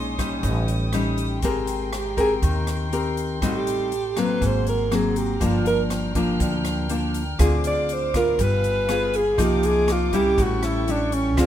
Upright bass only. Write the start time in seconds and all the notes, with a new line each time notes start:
Already playing: A#1
0.43 A1
1.43 G#1
2.42 D#2
3.42 A1
4.42 G#1
5.41 G1
6.40 D2
7.39 D2
8.39 G1
9.38 C2
10.38 A1
11.37 D2